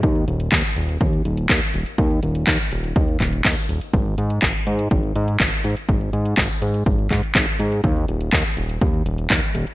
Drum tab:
HH |xxxxxxxxxxxxxxxx|xxxxxxxxxxxxxxxx|xxxxxxxxxxxxxxxx|xxxxxxxxxxxxxxxx|
CP |----x-------x---|----x-----x-x---|----x-------x---|----x-----x-x---|
BD |o---o---o---o---|o---o---o-o-o---|o---o---o---o---|o---o---o-o-o---|

HH |xxxxxxxxxxxxxxxx|
CP |----x-------x---|
BD |o---o---o---o---|